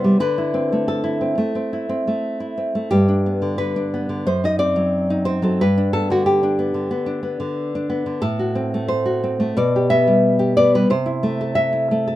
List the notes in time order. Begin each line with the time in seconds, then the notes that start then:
Already playing: C3 B3 E4 C5
0.04 G3
0.20 D3 B4
0.38 E4
0.54 C4
0.72 A3
0.88 A4
1.04 E4
1.21 C4
1.38 A3
1.55 C4
1.73 E4
1.89 C4
2.07 A3
2.40 E4
2.58 C4
2.75 A3
2.91 G2 G4
3.08 D4
3.26 B3
3.42 D3
3.58 B4
3.76 D4
3.94 B3
4.09 D3
4.27 F#2 C5
4.44 D#4 D#5
4.59 C4 D5
4.76 F#3
5.10 D#4
5.25 C4 C5
5.42 F#3 A4
5.61 G2 B4
5.78 D4
5.93 B3 A4
6.10 D3 F#4
6.26 G4
6.43 D4
6.59 B3
6.74 D3
6.91 B3
7.06 D4
7.23 B3
7.40 D3
7.75 D4
7.90 B3
8.06 D3
8.22 A2 A4
8.39 F#4
8.55 C4
8.74 A3
8.88 C5
9.05 F#4
9.24 C4
9.40 A3
9.57 B2 D5
9.76 G4
9.90 B3 E5
10.07 G3
10.39 G4
10.57 B3 D5
10.75 G3 B4
10.90 C3 C5
11.06 E4
11.23 A3
11.41 A4
11.55 E5
11.73 E4
11.91 A3
12.08 A4